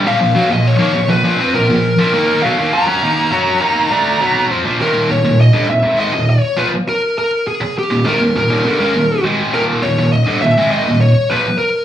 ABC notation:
X:1
M:4/4
L:1/16
Q:1/4=101
K:none
V:1 name="Lead electric guitar"
f3 _e _d3 _c3 _B6 | f2 _b12 z2 | _B2 _d2 _e2 _f2 e2 d2 _c2 B2 | _B2 _A2 G2 B2 B6 z2 |
_B2 _d2 _e2 _f2 e2 d2 _c2 B2 |]
V:2 name="Distorted electric guitar" clef=bass
[_B,,F,] [B,,F,] [_C,_G,] [B,,F,]2 [_E,_B,] [B,,F,] [B,,F,] [B,,F,] [F,=C] [B,,F,] [B,,F,]2 [B,,F,] [E,B,_E]2 | [_C,_G,] [_E,_B,] [F,=C] [G,_D] [E,B,_E]2 [G,D_G]2 [E,B,E]2 [=D,A,=D]2 [_C,G,_C]2 [F,=C] [_B,,F,] | [_E,,_B,,_E,]2 [E,,B,,] [E,,B,,]2 [G,,D,] [E,,B,,] [_A,,E,_A,]2 [E,,B,,]2 z [B,,F,] z3 | z4 z [_E,,_B,,] [_A,,_E,] [E,,B,,] [E,,B,,] [E,,B,,] [G,,D,] [_D,_A,] [E,,B,,]2 [A,,E,A,]2 |
[_E,,_B,,_E,]2 [E,,B,,] [E,,B,,]2 [G,,D,] [E,,B,,] [_A,,E,_A,]2 [E,,B,,]2 z [B,,F,] z3 |]